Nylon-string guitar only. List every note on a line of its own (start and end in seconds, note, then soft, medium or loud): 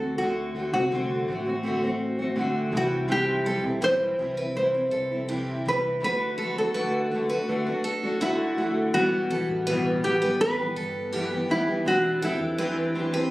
0.00 0.18 A4 medium
0.18 0.72 F#4 medium
0.74 2.15 F#4 medium
2.77 3.09 F#4 medium
3.12 3.83 G4 medium
3.84 4.52 C5 loud
4.57 5.25 C5 medium
5.68 6.03 B4 medium
6.04 6.58 B4 loud
6.58 8.00 A4 medium
8.22 8.94 E4 medium
8.94 10.04 F#4 loud
10.04 10.42 G4 medium
10.41 11.46 B4 loud
11.51 11.84 E4 medium
11.88 12.24 F#4 loud
12.25 13.29 E4 medium